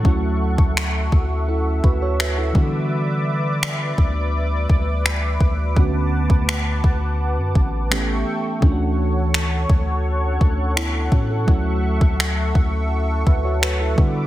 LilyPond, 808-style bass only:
\new Staff \with { instrumentName = "808-style bass" } { \clef bass \time 4/4 \key d \major \tempo 4 = 84 d,8. d,8. d,4 d,4 d8~ | d4. d,4 d,4 d,8 | d,8. d,8. d,8. fis,16 a,,4 r8 | d,4. d,4 d,4 a,8 |
d,8. d,8. d,4 d,4 d8 | }